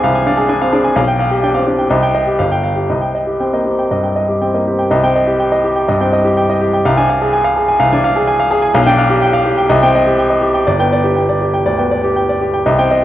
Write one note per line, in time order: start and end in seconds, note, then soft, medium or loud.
0.00 0.03 C2 medium
0.00 0.94 C2 medium
0.00 0.62 C4 medium
0.00 0.26 D4 medium
0.00 0.37 G#4 medium
0.00 0.03 F5 medium
0.00 0.22 F5 medium
0.00 0.15 G#5 medium
0.15 0.34 G#5 medium
0.26 0.45 D4 medium
0.26 0.45 F5 medium
0.37 0.57 G#4 medium
0.49 0.68 D4 medium
0.49 0.68 G#5 medium
0.61 0.73 C4 medium
0.61 0.80 F5 medium
0.72 0.92 D4 medium
0.72 0.92 G#4 medium
0.84 0.96 G#5 medium
0.96 1.87 B1 loud
0.96 1.15 F5 medium
1.08 1.27 G5 loud
1.19 1.38 F5 medium
1.31 1.50 G4 medium
1.43 1.62 D4 medium
1.43 1.62 G5 medium
1.54 1.66 C4 medium
1.54 1.74 F5 medium
1.66 1.86 D4 medium
1.66 1.86 G4 medium
1.79 1.91 G5 medium
1.90 2.37 C2 medium
1.90 2.10 D#5 medium
2.03 2.22 G5 loud
2.14 2.34 D#5 medium
2.27 2.39 G4 medium
2.39 2.88 G1 medium
2.39 2.59 F5 medium
2.52 2.72 G5 medium
2.64 2.84 F5 medium
2.76 2.89 G4 medium
2.90 3.89 C2 medium
2.90 3.10 D#5 medium
3.01 3.22 G5 medium
3.15 3.35 D#5 medium
3.27 3.48 G4 medium
3.40 3.61 C4 medium
3.40 3.61 G5 medium
3.53 3.66 A#3 soft
3.53 3.74 D#5 medium
3.66 3.87 C4 soft
3.66 3.87 G4 soft
3.79 4.00 G5 medium
3.91 4.12 G2 medium
3.91 4.12 D#5 medium
4.03 4.24 G5 medium
4.16 4.37 D#5 medium
4.29 4.50 G4 medium
4.42 4.62 C4 medium
4.42 4.62 G5 medium
4.54 4.68 A#3 soft
4.54 4.75 D#5 medium
4.67 4.88 C4 medium
4.67 4.88 G4 medium
4.79 4.92 G5 medium
4.91 5.85 C2 medium
4.91 5.11 D#5 medium
5.04 5.23 C4 medium
5.04 5.23 G5 medium
5.16 5.35 D#5 medium
5.27 5.47 G4 medium
5.40 5.60 G5 medium
5.52 5.72 D#5 medium
5.64 5.84 G4 medium
5.76 5.96 G5 medium
5.88 6.08 G2 medium
5.88 6.08 D#5 medium
6.01 6.20 C4 medium
6.01 6.20 G5 medium
6.13 6.32 D#5 medium
6.25 6.44 G4 medium
6.37 6.56 G5 medium
6.49 6.68 D#5 medium
6.61 6.80 G4 medium
6.73 6.85 G5 medium
6.85 7.77 C2 loud
6.85 7.04 F5 medium
6.97 7.16 D4 medium
6.97 7.16 G#5 loud
7.09 7.28 F5 medium
7.22 7.40 G#4 medium
7.33 7.52 G#5 medium
7.44 7.63 F5 medium
7.56 7.75 G#4 medium
7.68 7.87 G#5 medium
7.80 8.71 C2 medium
7.80 7.99 F5 loud
7.93 8.11 D4 medium
7.93 8.11 G#5 loud
8.04 8.23 F5 loud
8.16 8.35 G#4 medium
8.28 8.46 G#5 medium
8.39 8.58 F5 medium
8.51 8.70 G#4 medium
8.62 8.74 G#5 medium
8.74 9.66 B1 loud
8.74 8.93 F5 loud
8.86 9.05 D4 medium
8.86 9.05 G5 loud
8.98 9.17 F5 medium
9.10 9.29 G4 medium
9.22 9.41 G5 loud
9.33 9.52 F5 medium
9.46 9.65 G4 medium
9.57 9.69 G5 medium
9.69 10.64 C2 loud
9.69 9.89 D#5 medium
9.82 10.01 C4 medium
9.82 10.01 G5 loud
9.95 10.14 D#5 medium
10.07 10.26 G4 medium
10.19 10.38 G5 medium
10.30 10.50 D#5 medium
10.42 10.62 G4 medium
10.54 10.67 G5 medium
10.67 11.64 G1 medium
10.67 10.87 D5 medium
10.80 11.00 B3 medium
10.80 11.00 G5 loud
10.92 11.12 D5 medium
11.04 11.24 G4 medium
11.16 11.37 G5 medium
11.29 11.49 D5 medium
11.42 11.62 G4 medium
11.54 11.74 G5 medium
11.66 11.87 D2 medium
11.66 11.87 D5 medium
11.79 11.99 B3 medium
11.79 11.99 G5 medium
11.91 12.12 D5 medium
12.04 12.24 G4 medium
12.16 12.37 G5 medium
12.29 12.50 D5 medium
12.41 12.62 G4 medium
12.54 12.67 G5 medium
12.66 13.04 C2 medium
12.66 12.86 D#5 medium
12.79 12.99 C4 medium
12.79 12.99 G5 loud
12.91 13.04 D#5 medium